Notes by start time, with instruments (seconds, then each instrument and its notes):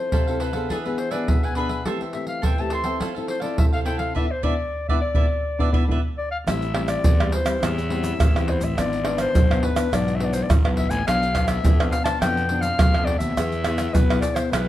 Already playing: nylon-string guitar C4 E4 A4, clarinet C5
0.12 nylon-string guitar C3, cavaquinho E4 A4 C5 F5, pandeiro, surdo
0.27 nylon-string guitar C4 E4 A4, cavaquinho A4 C5 F5, pandeiro
0.40 cavaquinho E4 A4 C5 F5, clarinet B4, pandeiro
0.53 nylon-string guitar B3 D4 G#4, cavaquinho A4 C5 F5, pandeiro
0.69 nylon-string guitar E3, cavaquinho D4 G#4 B4 E5, clarinet A4, pandeiro, surdo
0.84 nylon-string guitar B3 D4 G#4, cavaquinho G#4 B4 E5, clarinet B4, pandeiro
0.98 clarinet C5, muted cavaquinho stroke, pandeiro
1.11 nylon-string guitar B3 D4 G#4, cavaquinho G#4 B4 E5, clarinet D5, pandeiro
1.28 nylon-string guitar B2, clarinet E5, pandeiro, surdo
1.43 cavaquinho G#4 B4 E5, clarinet G#5, pandeiro
1.55 nylon-string guitar B3 D4 G#4, cavaquinho D4 G#4 B4 E5, clarinet B5, pandeiro
1.69 cavaquinho G#4 B4 E5, pandeiro
1.85 nylon-string guitar E3 A3 C4 G4, cavaquinho A4 C5 E5 G5, pandeiro, surdo
2.01 cavaquinho C5 E5 G5, pandeiro
2.13 nylon-string guitar A3 C4 G4, clarinet E5, muted cavaquinho stroke, pandeiro
2.27 clarinet F5, pandeiro
2.42 nylon-string guitar E3, cavaquinho A4 C5 E5 G5, clarinet G5, pandeiro, surdo
2.58 nylon-string guitar A3 C4 G4, cavaquinho C5 E5 G5, clarinet A5, pandeiro
2.70 cavaquinho A4 C5 E5 G5, clarinet C6, pandeiro
2.84 nylon-string guitar C4 E4 A4, cavaquinho C5 E5 G5, pandeiro
3.00 nylon-string guitar F3, cavaquinho E4 A4 C5 F5, pandeiro, surdo
3.15 nylon-string guitar C4 E4 A4, cavaquinho A4 C5 F5, pandeiro
3.27 clarinet C5, muted cavaquinho stroke, pandeiro
3.40 nylon-string guitar C4 E4 A4, cavaquinho A4 C5 F5, clarinet D5, pandeiro
3.58 nylon-string guitar C3, clarinet E5, pandeiro, surdo
3.72 cavaquinho A4 C5 F5, clarinet F5, pandeiro
3.85 nylon-string guitar C4 E4 A4, cavaquinho E4 A4 C5 F5, clarinet G5, pandeiro
3.98 cavaquinho A4 C5 F5, clarinet F5, pandeiro
4.15 nylon-string guitar B3 D4 E4, cavaquinho B4 D5 E5, clarinet E5, surdo
4.31 clarinet C5
4.43 nylon-string guitar B3 D4 E4, cavaquinho B4 D5 E5, clarinet D5, surdo
4.89 nylon-string guitar B3 D4 E4, cavaquinho B4 D5 E5, clarinet E5, surdo
5.01 clarinet D5
5.14 nylon-string guitar B3 D4 E4, cavaquinho B4 D5 E5, surdo
5.59 nylon-string guitar B3 D4 E4, cavaquinho B4 D5 E5, surdo
5.72 nylon-string guitar B3 D4 E4, cavaquinho B4 D5 E5, surdo
5.88 nylon-string guitar B3 D4 E4, cavaquinho B4 D5 E5, surdo
6.18 clarinet D5
6.31 clarinet F5
6.47 fingered electric bass A1, nylon-string guitar A2 G3 C4 E4, clarinet E5, pandeiro, tamborim, shaker, surdo
6.62 pandeiro, shaker
6.74 nylon-string guitar G3 C4 E4, pandeiro, tamborim
6.88 clarinet D5, pandeiro, tamborim, shaker
7.04 fingered electric bass E2, nylon-string guitar E3, pandeiro, shaker, surdo
7.20 nylon-string guitar G3 C4 E4, pandeiro, tamborim, shaker
7.32 clarinet C5, pandeiro
7.44 nylon-string guitar G3 C4 E4, pandeiro, tamborim, shaker
7.61 fingered electric bass E2, nylon-string guitar A2 G3 C4 E4, clarinet E5, pandeiro, tamborim, shaker, surdo
7.78 pandeiro, shaker
7.89 nylon-string guitar G3 C4 E4, pandeiro
8.04 pandeiro, shaker
8.19 fingered electric bass A1, nylon-string guitar E3, pandeiro, tamborim, shaker, surdo
8.34 fingered electric bass E2, nylon-string guitar G3 C4 E4, pandeiro, tamborim, shaker
8.48 clarinet C5, pandeiro
8.61 fingered electric bass A1, clarinet E5, pandeiro, shaker
8.77 fingered electric bass G#1, nylon-string guitar G#2 E3 B3 D4, clarinet D5, pandeiro, tamborim, shaker, surdo
8.93 pandeiro, shaker
9.05 nylon-string guitar E3 B3 D4, pandeiro, tamborim
9.18 clarinet C5, pandeiro, tamborim, shaker
9.35 fingered electric bass B1, nylon-string guitar G#2, pandeiro, shaker, surdo
9.50 nylon-string guitar E3 B3 D4, pandeiro, tamborim, shaker
9.63 clarinet B4, pandeiro
9.75 nylon-string guitar E3 B3 D4, pandeiro, tamborim, shaker
9.92 fingered electric bass B1, nylon-string guitar G#2 E3 B3 D4, clarinet D5, pandeiro, tamborim, shaker, surdo
10.08 pandeiro, shaker
10.16 nylon-string guitar E3, clarinet E5
10.20 nylon-string guitar B3 D4, pandeiro
10.24 clarinet D5
10.33 clarinet C5, pandeiro, shaker
10.43 clarinet D5
10.49 fingered electric bass G#1, nylon-string guitar G#2, pandeiro, tamborim, shaker, surdo
10.64 fingered electric bass B1, nylon-string guitar E3 B3 D4, pandeiro, tamborim, shaker
10.77 clarinet E5, pandeiro
10.90 fingered electric bass A1, clarinet G#5, pandeiro, shaker
11.07 fingered electric bass B1, nylon-string guitar B2 F3 B3 D4, clarinet F5, pandeiro, tamborim, shaker, surdo
11.23 pandeiro, shaker
11.34 nylon-string guitar F3 B3 D4, pandeiro, tamborim, shaker, surdo
11.48 clarinet E5, pandeiro, tamborim, shaker
11.64 fingered electric bass F2, nylon-string guitar B2, pandeiro, shaker, surdo
11.79 nylon-string guitar F3 B3 D4, pandeiro, tamborim, shaker
11.91 clarinet F5, pandeiro, shaker
12.04 nylon-string guitar F3 B3 D4, clarinet A5, pandeiro, tamborim, shaker
12.21 fingered electric bass F2, nylon-string guitar B2 F3 B3 D4, clarinet G5, pandeiro, tamborim, shaker, surdo
12.37 pandeiro, shaker
12.49 nylon-string guitar F3 B3 D4, pandeiro
12.61 clarinet F5, pandeiro, shaker
12.79 fingered electric bass B1, nylon-string guitar B2, pandeiro, tamborim, shaker, surdo
12.94 fingered electric bass F2, nylon-string guitar F3 B3 D4, pandeiro, tamborim, shaker
13.05 clarinet D5, pandeiro
13.19 fingered electric bass D#2, clarinet E5, pandeiro, shaker
13.37 fingered electric bass E2, nylon-string guitar E3 B3 E4 G#4, pandeiro, tamborim, shaker, surdo
13.52 pandeiro, shaker
13.64 nylon-string guitar B3 E4 G#4, pandeiro, tamborim, shaker
13.78 pandeiro, tamborim, shaker
13.94 fingered electric bass B1, nylon-string guitar B2, clarinet B4, pandeiro, shaker, surdo
14.10 nylon-string guitar B3 E4 G#4, pandeiro, tamborim, shaker
14.21 clarinet D5, pandeiro, shaker
14.35 clarinet C5, pandeiro, tamborim, shaker
14.52 fingered electric bass B1, nylon-string guitar E3 B3 E4 G#4, clarinet B4, pandeiro, tamborim, shaker, surdo